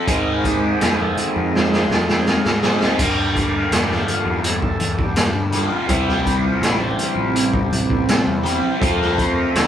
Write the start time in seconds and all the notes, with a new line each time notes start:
0.07 G#2 D#3 G#3 C4 D#4 G#4, kick, closed hi-hat
0.12 A#4
0.43 G4, kick, closed hi-hat, low conga
0.81 F2, snare, closed hi-hat
0.98 A4, high conga
1.15 closed hi-hat, low conga
1.36 F2 A#4, high conga
1.51 D#3 G#3 C4
1.55 C5, snare
1.73 snare
1.90 F2 A4, snare, high conga, low conga
2.09 snare
2.20 C5
2.26 A#4, snare
2.45 G#2, snare
2.62 G#3 C4 D#4 G#4 C5, snare, high conga
2.81 snare, high conga
2.99 G2 D3 G3 A#3 D4 G4 A#4, kick, closed hi-hat, crash
3.19 D5
3.33 D3 G3 A#3, kick, closed hi-hat, low conga
3.57 A#4
3.72 E2 G4, snare, closed hi-hat
3.90 snare, high conga
4.07 closed hi-hat, low conga
4.12 F4
4.25 E2, high conga
4.44 A4, closed hi-hat
4.62 kick
4.79 E2, closed hi-hat, high conga, low conga
4.99 kick
5.03 G4
5.16 snare, closed hi-hat
5.33 G2
5.52 G2 D3 G3 A#3 D4 G4, closed hi-hat, low conga
5.57 F4
5.71 high conga
5.87 C2 C3 E3 G3 C4 E4 G4, kick, closed hi-hat
6.09 G4, snare
6.25 kick, closed hi-hat, low conga
6.45 F4
6.60 A1 E4, snare, closed hi-hat
6.79 D4, high conga
6.97 closed hi-hat, low conga
7.14 A1 F4, high conga
7.35 G4, closed hi-hat
7.53 kick
7.71 A1, closed hi-hat, high conga, low conga
7.90 kick
8.08 snare, closed hi-hat
8.27 E2
8.43 C3 G3 C4 E4 G4, closed hi-hat, low conga
8.62 high conga
8.79 F2 F3 A3 C4 A4, kick, closed hi-hat
8.83 C4 F4 A4
8.96 A#4
9.02 snare
9.12 C5
9.16 kick, closed hi-hat, low conga
9.31 A#4
9.51 A4
9.55 D2, snare, closed hi-hat